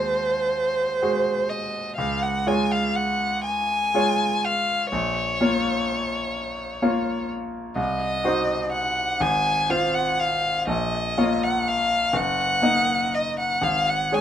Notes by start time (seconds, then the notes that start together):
Already playing: D#2 G#3 F#4 C5
1.02 G#3 F#4 C5
1.49 D#5
1.96 C#2 F5
2.22 F#5
2.47 G#3 F4 C#5 G#5
2.72 F5
2.95 F#5
3.44 G#5
3.94 G#3 F4 C#5
4.45 F5
4.91 A#1 C#5
5.41 A#3 F4 C#5
6.82 A#3 F4 C#5
7.76 C2 D#5
8.24 D#4 F#4 C5
8.72 F#5
9.20 G#1 G#5
9.70 C4 F4 C5 F5
9.95 F#5
10.20 F5
10.67 A#1 D#5
11.18 A#3 F4 C#5
11.43 F#5
11.67 F5
12.13 F#1 F#5
12.62 A#3 D#4 D#5
13.14 D#5
13.39 F#5
13.62 G#1 F5
13.89 F#5
14.12 G#3 G#4 C#5 G#5